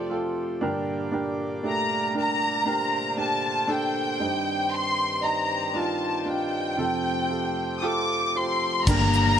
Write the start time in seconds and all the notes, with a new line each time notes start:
Already playing: F2 C3 F3 A3 F4 G4 A4 C5 D5
0.10 F4 G4 A4
0.61 G2 A#2 D3 D4 G4 A#4 D5
1.12 D4 G4 A#4
1.63 A3 D4 G4
1.68 A#5
2.14 D4 G4 A#4
2.19 A#5
2.65 D4 G4 A#4 C5
3.17 D4 G4 A#4 A5
3.67 D4 G4 A4
3.72 G5
4.19 G2 D#3 G3 C4 D4 D#4 C5
4.73 C6
5.21 D#4 D5 D#5 A#5
5.74 D4 D#4 F4 A5
6.25 D4 D#4 F4 G5
6.77 F2 C3 F3 A3 F4 G4 A4 C5
7.29 F4 G4 A4
7.78 D#6
7.82 F4 G4 A4 D6
8.34 F4 G4 C5 C6
8.87 G1 G2 D3 G3 A#3 D4 G4 A#4 A#5, kick, crash, downlifter, shaker
9.13 shaker